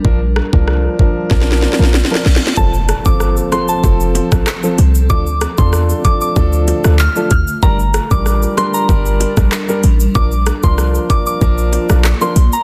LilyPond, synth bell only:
\new Staff \with { instrumentName = "Synth bell" } { \time 4/4 \key f \major \tempo 4 = 95 r1 | a''16 r8 d'''16 r8 c'''16 a''16 r2 | d'''16 r8 c'''16 r8 d'''16 d'''16 r4 f'''16 r16 f'''16 r16 | bes''16 r8 d'''16 r8 c'''16 bes''16 r2 |
d'''16 r8 c'''16 r8 d'''16 d'''16 r4 r16 c'''16 r16 bes''16 | }